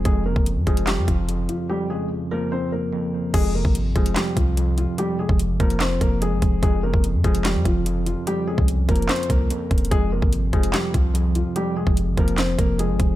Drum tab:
CC |------------------------------------------------|------------------------------------------------|x-----------------------------------------------|------------------------------------------------|
HH |x-----------x-----x--x--x-----x-----x-----x-----|------------------------------------------------|x-----------x-----x--x--x-----x-----x-----x-----|x-----------x-----x--x--x-----x-----x-----x-----|
CP |------------------------x-----------------------|------------------------------------------------|------------------------x-----------------------|------------------------x-----------------------|
SD |------------------------o-----------------------|------------------------------------------------|------------------------o-----------------------|------------------------o-----------------------|
BD |o--------o--------o-----------o-----------------|------------------------------------------------|o--------o--------o-----------o-----------------|---------o--------o-----------o-----------o-----|

CC |------------------------------------------------|------------------------------------------------|------------------------------------------------|------------------------------------------------|
HH |x-----------x-----x--x--x-----x-----x-----x-----|x-----------x-----x-x-x-x-x-x-x-----x-----x-x-x-|x-----------x-----x--x--x-----x-----x-----x-----|x-----------x-----x--x--x-----x-----x-----x-----|
CP |------------------------x-----------------------|------------------------x-----------------------|------------------------x-----------------------|------------------------x-----------------------|
SD |------------------------o-----------------------|------------------------o-----------------------|------------------------o-----------------------|------------------------o-----------------------|
BD |o--------o--------o-----------o-----------------|---------o--------o-----------o-----------o-----|o--------o--------o-----------o-----------------|---------o--------o-----------o-----------o-----|